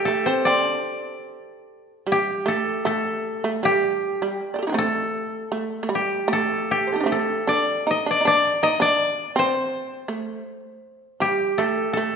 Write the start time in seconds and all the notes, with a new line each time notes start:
Already playing: G4 C5
0.05 A3 A4
0.26 C4 C5
0.45 C4 D5
0.70 D4
2.07 G3
2.12 G4
2.46 A3 A4
2.85 A3 A4
3.44 A3
3.63 G3 G4
4.22 G3
4.54 C5 D5
4.59 G4 A4
4.67 D4 D#4
4.72 A3 C4
4.78 A4
5.52 A3
5.83 A3
5.89 G3
5.95 G4
6.28 A3
6.33 A4
6.71 G4
6.87 C5
6.92 D#4 G4 A4
7.00 C4 D4
7.06 A3
7.12 A4
7.47 D4 D5
7.87 D#4 D#5
8.06 D4
8.11 D5
8.21 D#4
8.25 D4 D5
8.63 D#4 D#5
8.80 D4 D5
9.36 C4 C5
10.08 A3
11.20 G3 G4
11.58 A3 A4
11.93 A3 A4